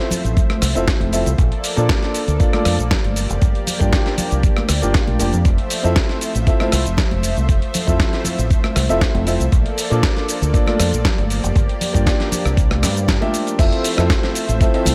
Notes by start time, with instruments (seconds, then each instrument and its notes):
Already playing: analog synth pad F3 A3 C5 E5, grand piano C4 E4 F4 A4 E5
0.11 muted fingered electric bass stroke, open hi-hat, low conga, shaker
0.24 fingered electric bass A1, closed hi-hat, shaker
0.37 kick, closed hi-hat, shaker
0.50 cross-stick, closed hi-hat, high conga
0.62 fingered electric bass C2, cross-stick, open hi-hat, shaker
0.75 fingered electric bass F1, grand piano C4 E4 F4 A4 E5, closed hi-hat, shaker
0.88 kick, snare, closed hi-hat, shaker
1.00 fingered electric bass F1, closed hi-hat, high conga
1.12 grand piano C4 E4 F4 A4 E5, open hi-hat, shaker
1.26 fingered electric bass C2, closed hi-hat, shaker
1.38 fingered electric bass A#1, analog synth pad A#3 A4 D5, kick, closed hi-hat, shaker
1.52 closed hi-hat
1.64 open hi-hat, shaker
1.76 fingered electric bass A#2, grand piano A#3 D4 F4 A4 D5, closed hi-hat, shaker
1.89 kick, snare, closed hi-hat, shaker
2.02 snare, closed hi-hat
2.14 open hi-hat, shaker
2.28 fingered electric bass D2, closed hi-hat, shaker
2.39 grand piano A#3 D4 F4 A4 D5, kick, closed hi-hat, shaker
2.53 grand piano A#3 D4 F4 A4 D5, cross-stick, closed hi-hat, high conga
2.65 fingered electric bass F2, cross-stick, open hi-hat, shaker
2.79 fingered electric bass A#1, closed hi-hat, shaker
2.91 kick, snare, closed hi-hat, low conga, shaker
3.04 fingered electric bass G1, closed hi-hat, high conga
3.16 analog synth pad G4, open hi-hat, shaker
3.30 fingered electric bass F1, closed hi-hat, shaker
3.42 fingered electric bass G1, kick, closed hi-hat, shaker
3.55 closed hi-hat
3.67 open hi-hat, low conga, shaker
3.79 fingered electric bass G2, grand piano A#3 D4 F4 G4 D5, kick, shaker
3.93 kick, snare, closed hi-hat, shaker
4.06 snare, closed hi-hat
4.18 muted fingered electric bass stroke, open hi-hat, low conga, shaker
4.31 fingered electric bass C2, closed hi-hat, shaker
4.43 kick, closed hi-hat, shaker
4.57 cross-stick, closed hi-hat, high conga
4.69 fingered electric bass D2, cross-stick, open hi-hat, shaker
4.82 fingered electric bass G1, grand piano A#3 D4 F4 G4 D5, closed hi-hat, shaker
4.94 kick, snare, closed hi-hat, shaker
5.07 fingered electric bass A#1, closed hi-hat, high conga
5.19 fingered electric bass F1, grand piano A#3 D4 F4 G4 D5, open hi-hat, shaker
5.33 fingered electric bass F2, closed hi-hat, shaker
5.45 fingered electric bass F1, analog synth pad F3 A3 C5 E5, kick, closed hi-hat, shaker
5.58 closed hi-hat
5.70 open hi-hat, shaker
5.83 fingered electric bass F2, grand piano C4 E4 F4 A4 E5, closed hi-hat, shaker
5.96 kick, snare, closed hi-hat, shaker
6.09 snare, closed hi-hat
6.21 open hi-hat, shaker
6.35 fingered electric bass A1, closed hi-hat, shaker
6.47 grand piano C4 E4 F4 A4 E5, kick, closed hi-hat, shaker
6.60 grand piano C4 E4 F4 A4 E5, cross-stick, closed hi-hat, high conga
6.72 fingered electric bass C2, cross-stick, open hi-hat, shaker
6.86 fingered electric bass F1, closed hi-hat, shaker
6.97 kick, snare, closed hi-hat, low conga, shaker
7.11 fingered electric bass F1, closed hi-hat, high conga
7.23 open hi-hat, shaker
7.37 fingered electric bass C2, closed hi-hat, shaker
7.49 fingered electric bass F1, kick, closed hi-hat, shaker
7.62 closed hi-hat
7.74 open hi-hat, low conga, shaker
7.87 fingered electric bass F2, grand piano C4 E4 F4 A4 E5, kick, closed hi-hat, shaker
8.00 kick, snare, closed hi-hat, shaker
8.13 snare, closed hi-hat
8.24 muted fingered electric bass stroke, open hi-hat, low conga, shaker
8.38 fingered electric bass A1, closed hi-hat, shaker
8.50 kick, closed hi-hat, shaker
8.64 cross-stick, closed hi-hat, high conga
8.76 fingered electric bass C2, cross-stick, open hi-hat, shaker
8.89 fingered electric bass F1, grand piano C4 E4 F4 A4 E5, closed hi-hat, shaker
9.01 kick, snare, closed hi-hat, shaker
9.14 fingered electric bass F1, closed hi-hat, high conga
9.27 grand piano C4 E4 F4 A4 E5, open hi-hat, shaker
9.40 fingered electric bass C2, closed hi-hat, shaker
9.52 fingered electric bass A#1, analog synth pad A#3 A4 D5, kick, closed hi-hat, shaker
9.66 closed hi-hat
9.78 open hi-hat, shaker
9.90 fingered electric bass A#2, grand piano A#3 D4 F4 A4 D5, shaker
10.03 kick, snare, closed hi-hat, shaker
10.17 snare, closed hi-hat
10.29 open hi-hat, shaker
10.42 fingered electric bass D2, closed hi-hat, shaker
10.53 grand piano A#3 D4 F4 A4 D5, kick, closed hi-hat, shaker
10.67 grand piano A#3 D4 F4 A4 D5, cross-stick, closed hi-hat, high conga
10.79 fingered electric bass F2, cross-stick, open hi-hat, shaker
10.93 fingered electric bass A#1, closed hi-hat, shaker
11.05 kick, snare, closed hi-hat, low conga, shaker
11.18 fingered electric bass G1, closed hi-hat, high conga
11.30 analog synth pad G4, open hi-hat, shaker
11.43 fingered electric bass F1, closed hi-hat, shaker
11.56 fingered electric bass G1, kick, closed hi-hat, shaker
11.69 closed hi-hat
11.81 open hi-hat, low conga, shaker
11.93 fingered electric bass G2, grand piano A#3 D4 F4 G4 D5, kick, closed hi-hat, shaker
12.06 kick, snare, closed hi-hat, shaker
12.20 snare, closed hi-hat
12.32 muted fingered electric bass stroke, open hi-hat, low conga, shaker
12.45 fingered electric bass C2, cross-stick, closed hi-hat, shaker
12.57 kick, closed hi-hat, shaker
12.71 cross-stick, closed hi-hat, high conga
12.82 fingered electric bass G2, cross-stick, snare, open hi-hat, shaker
12.96 closed hi-hat, shaker
13.08 kick, snare, closed hi-hat, shaker
13.21 grand piano A#3 D4 F4 G4 E5, closed hi-hat, high conga
13.34 open hi-hat, shaker
13.47 closed hi-hat, shaker
13.58 fingered electric bass F1, analog synth pad F3 A3 C5 E5, grand piano C4 E4 F4 A4 E5, kick, closed hi-hat, crash, shaker
13.72 closed hi-hat
13.84 open hi-hat, shaker
13.97 fingered electric bass F2, grand piano C4 E4 F4 A4 E5, cross-stick, shaker
14.10 kick, snare, closed hi-hat, shaker
14.23 snare, closed hi-hat
14.35 open hi-hat, shaker
14.48 fingered electric bass A1, closed hi-hat, high conga, shaker
14.60 grand piano C4 E4 F4 A4 E5, kick, closed hi-hat, shaker
14.74 grand piano C4 E4 F4 A4 E5, closed hi-hat
14.85 fingered electric bass C2, open hi-hat, high conga, shaker